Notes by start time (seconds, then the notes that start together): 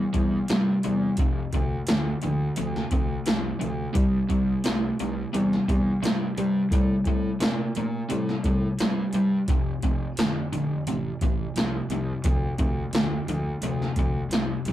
Already playing: C3 G3
0.14 E2 C3 G3, kick, closed hi-hat
0.48 G2 C3 G3, snare, closed hi-hat
0.83 E2 C3 G3, closed hi-hat
1.17 F1 F2 C3, kick, closed hi-hat
1.53 D2 F2 C3, kick, closed hi-hat
1.87 D2 F2 D3, snare, closed hi-hat
2.22 D2 F2 D3, closed hi-hat
2.56 D2 F2 C3, closed hi-hat
2.76 snare
2.91 D2 F2 C3, kick, closed hi-hat
3.26 C2 F2 C3, snare, closed hi-hat
3.60 D2 F2 C3, closed hi-hat
3.94 C2 C3 G3, kick, closed hi-hat
4.30 C2 C3 G3, kick, closed hi-hat
4.64 C2 C3 A3, snare, closed hi-hat
4.99 C2 C3 A3, closed hi-hat
5.33 E2 C3 G3, closed hi-hat
5.53 snare
5.68 E2 C3 G3, kick, closed hi-hat
6.03 G2 C3 G3, snare, closed hi-hat
6.37 G2 C3 G3, closed hi-hat
6.71 A2 C3 G3, kick, closed hi-hat
7.05 A2 C3 G3, kick, closed hi-hat
7.40 A#2 C3 A3, snare, closed hi-hat
7.75 A#2 C3 A3, closed hi-hat
8.10 A2 C3 G3, closed hi-hat
8.29 snare
8.44 A2 C3 G3, kick, closed hi-hat
8.79 G2 C3 G3, snare, closed hi-hat
9.13 G2 C3 G3, closed hi-hat
9.48 F1 F2 C3, kick, closed hi-hat
9.82 F1 F2 C3, kick, closed hi-hat
10.17 F1 F2 D3, snare, closed hi-hat
10.53 F1 F2 D3, closed hi-hat
10.87 A1 F2 C3, closed hi-hat
11.21 A1 F2 C3, kick, closed hi-hat
11.56 C2 F2 C3, snare, closed hi-hat
11.89 C2 F2 C3, closed hi-hat
12.24 D2 F2 C3, kick, closed hi-hat
12.58 D2 F2 C3, kick, closed hi-hat
12.93 D2 F2 D3, snare, closed hi-hat
13.27 D2 F2 D3, closed hi-hat
13.61 D2 F2 C3, closed hi-hat
13.82 snare
13.96 D2 F2 C3, kick, closed hi-hat
14.29 C2, snare, closed hi-hat
14.34 F2 C3
14.65 C2 F2 C3, closed hi-hat